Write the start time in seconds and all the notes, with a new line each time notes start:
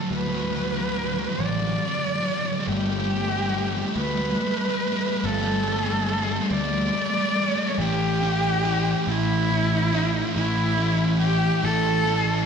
Already playing: A4
0.01 D3 F#3
0.10 D2 D3 F#3 B4
0.19 D3 F#3
0.26 D3 F#3
0.34 D3 F#3
0.41 D3 F#3
0.49 D3 F#3
0.57 D3 F#3
0.65 D3 F#3
0.73 D3 F#3
0.81 D3 F#3
0.88 D3 F#3
0.95 D3 F#3
1.03 D3 F#3
1.11 D3 F#3
1.18 D3 F#3
1.28 D3 F#3
1.35 D3 F#3
1.39 A1 D5
1.43 D3 F#3
1.50 D3 F#3
1.58 D3 F#3
1.66 D3 F#3
1.74 D3 F#3
1.81 D3 F#3
1.89 D3 F#3
1.97 D3 F#3
2.05 D3 F#3
2.12 D3 F#3
2.20 D3 F#3
2.29 D3 F#3
2.36 D3 F#3
2.44 D3 F#3
2.51 D3 F#3
2.59 D3 F#3
2.68 G1 G3 A3 G4
2.76 G3 A3
2.83 G3 A3
2.90 G3 A3
2.99 G3 A3
3.05 G3 A3
3.14 G3 A3
3.21 G3 A3
3.29 G3 A3
3.37 G3 A3
3.45 G3 A3
3.52 G3 A3
3.60 G3 A3
3.68 G3 A3
3.76 G3 A3
3.83 G3 A3
3.91 G3 A3
3.96 D2 B4
4.00 G3 A3
4.06 G3 A3
4.14 G3 A3
4.21 G3 A3
4.30 G3 A3
4.37 G3 A3
4.44 G3 A3
4.53 G3 A3
4.60 G3 A3
4.68 G3 A3
4.76 G3 A3
4.83 G3 A3
4.91 G3 A3
4.98 G3 A3
5.06 G3 A3
5.15 G3 A3
5.23 G1 G3 A3 A4
5.31 G3 A3
5.39 G3 A3
5.46 G3 A3
5.54 G3 A3
5.62 G3 A3
5.70 G3 A3
5.77 G3 A3
5.85 G3 A3
5.92 G3 A3
6.01 G3 A3
6.08 G3 A3
6.16 G3 A3
6.24 G3 A3
6.32 G3 A3
6.40 G3 A3
6.47 D2 G3 A3
6.52 A3 D5
6.56 G3
6.63 G3 A3
6.70 G3 A3
6.79 G3 A3
6.87 G3 A3
6.94 G3 A3
7.01 G3 A3
7.10 G3 A3
7.17 G3 A3
7.24 G3 A3
7.32 G3 A3
7.41 G3 A3
7.48 G3 A3
7.57 G3 A3
7.64 G3 A3
7.70 G3 A3
7.78 A1 A2 E3 A3 C#4 E4 G4
8.21 A2 E3 A3 C#4 E4
8.64 A2 E3 A3 C#4 E4
9.07 A1 A2 E3 A3 C#4 E4
9.50 A2 E3 A3 C#4 E4
9.92 A2 E3 A3 C#4 E4
10.35 A1 A2 E3 A3 C#4 E4
10.78 A2 E3 A3 C#4 E4
11.20 A2 E3 A3 C#4 E4 G4
11.63 A1 A2 E3 A3 C#4 E4 A4
12.05 A2 E3 A3 C#4 E4